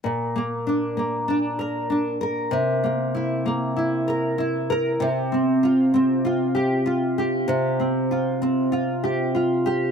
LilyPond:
\new Staff \with { instrumentName = "Nylon-string guitar" } { \time 4/4 \key bes \major \tempo 4 = 97 bes,8 bes8 d'8 bes8 d'8 bes'8 d'8 bes'8 | c8 bes8 e'8 bes8 e'8 bes'8 e'8 bes'8 | c8 c'8 f'8 c'8 f'8 g'8 f'8 g'8 | c8 c'8 f'8 c'8 f'8 g'8 f'8 g'8 | }